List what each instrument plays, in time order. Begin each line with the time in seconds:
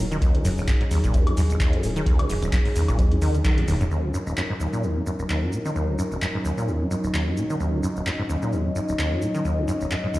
Already playing: analog synth pad F#3 C#4 D#4 A#4
0.00 sub bass D#1
0.11 acid bass D#3, closed hi-hat, shaker
0.22 acid bass D#2, analog synth pad G#4, kick, closed hi-hat, shaker
0.34 acid bass C#2, closed hi-hat
0.45 sub bass D#1, acid bass F#2, mid tom, open hi-hat, shaker
0.58 acid bass D#1, sub bass D#1, shaker
0.68 acid bass F#2, kick, clap, closed hi-hat, shaker
0.81 acid bass G#2, closed hi-hat
0.91 acid bass D#2, sub bass D#2, open hi-hat, shaker
1.04 sub bass D#1, acid bass A#2, kick, closed hi-hat, shaker
1.14 acid bass D#2, kick, closed hi-hat, shaker
1.27 acid bass F#2, closed hi-hat, high woodblock
1.37 sub bass D#2, acid bass F#2, open hi-hat, shaker
1.50 acid bass D#1, closed hi-hat, shaker
1.60 acid bass D#2, kick, clap, closed hi-hat, shaker
1.73 acid bass F#2, closed hi-hat
1.83 sub bass D#1, acid bass A#2, open hi-hat, shaker
1.96 acid bass D#3, closed hi-hat, shaker
2.06 acid bass D#2, kick, closed hi-hat, shaker
2.19 acid bass C#2, closed hi-hat, high woodblock
2.29 sub bass D#1, acid bass F#2, mid tom, open hi-hat, shaker
2.42 acid bass D#1, sub bass D#1, closed hi-hat, shaker
2.53 acid bass F#2, kick, clap, closed hi-hat, shaker
2.65 acid bass G#2, open hi-hat
2.76 sub bass D#2, acid bass D#2, open hi-hat, shaker
2.88 sub bass D#1, acid bass A#2, kick, closed hi-hat, high woodblock, shaker
2.99 acid bass D#2, kick, closed hi-hat, shaker
3.11 acid bass F#2, closed hi-hat, mid tom
3.22 sub bass D#2, acid bass D#3, open hi-hat, shaker
3.35 acid bass C#3, closed hi-hat, shaker
3.45 acid bass D#3, kick, clap, closed hi-hat, shaker
3.58 acid bass D#2, closed hi-hat, high tom
3.68 sub bass D#1, acid bass D#2, open hi-hat, mid tom, shaker
3.81 acid bass F#2, closed hi-hat, mid tom, shaker
3.91 acid bass D#2, analog synth pad F#3 C#4 D#4 A#4, shaker
4.04 acid bass C#2
4.14 acid bass F#2, shaker
4.27 acid bass D#1, shaker
4.37 acid bass F#2, clap, shaker
4.50 acid bass G#2
4.60 acid bass D#2, shaker
4.73 acid bass A#2, shaker
4.83 acid bass D#2, shaker
4.96 acid bass F#2
5.06 acid bass F#2, shaker
5.19 acid bass D#1, shaker
5.29 acid bass D#2, clap, shaker
5.42 acid bass F#2
5.53 acid bass A#2, shaker
5.65 acid bass D#3, shaker
5.76 acid bass D#2, shaker
5.88 acid bass C#2
5.99 acid bass F#2, shaker
6.12 acid bass D#1, shaker
6.22 acid bass F#2, clap, shaker
6.35 acid bass G#2
6.45 acid bass D#2, shaker
6.58 acid bass A#2, shaker
6.68 acid bass D#2, shaker
6.81 acid bass F#2
6.91 acid bass F#2, shaker
7.04 acid bass D#1, shaker
7.14 acid bass D#2, clap, shaker
7.27 acid bass F#2
7.37 acid bass A#2, shaker
7.50 acid bass D#3, shaker
7.60 acid bass D#2, analog synth pad D#5, shaker
7.73 acid bass C#2
7.83 acid bass F#2, shaker
7.96 acid bass D#1, shaker
8.06 acid bass F#2, clap, shaker
8.19 acid bass G#2
8.29 acid bass D#2, shaker
8.42 acid bass A#2, shaker
8.52 acid bass D#2, shaker
8.65 acid bass F#2
8.76 acid bass F#2, shaker
8.88 acid bass D#1, shaker
8.99 acid bass D#2, clap, shaker
9.12 acid bass F#2
9.22 acid bass A#2, shaker
9.35 acid bass D#3, shaker
9.45 acid bass D#2, shaker
9.58 acid bass C#2
9.68 acid bass F#2, shaker
9.81 acid bass D#1, shaker
9.91 acid bass F#2, clap, shaker
10.04 acid bass G#2
10.14 acid bass D#2, shaker